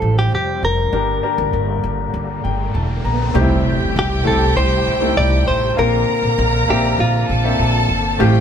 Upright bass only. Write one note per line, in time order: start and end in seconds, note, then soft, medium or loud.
0.02 0.27 A1 medium
0.32 0.57 F1 medium
0.63 0.88 F1 medium
0.93 1.18 G1 medium
1.38 1.51 G1 loud
1.53 1.78 G1 medium
1.84 2.09 G1 medium
2.14 2.39 G1 medium
2.45 2.69 G1 medium
2.75 3.00 E1 medium
3.05 3.30 A#1 medium
3.35 3.60 C2 loud
3.81 3.93 C2 medium
3.96 4.21 C2 loud
4.25 4.50 C2 medium
4.56 4.81 C2 loud
4.87 5.12 C2 medium
5.17 5.42 C2 medium
5.47 5.72 A1 medium
5.78 6.03 A#1 loud
6.23 6.35 A#1 medium
6.39 6.63 A#1 loud
6.70 6.94 A#1 medium
6.99 7.23 A#1 loud
7.30 7.54 A#1 medium
7.59 7.84 A#1 loud
7.89 8.14 G1 medium
8.20 8.40 A1 loud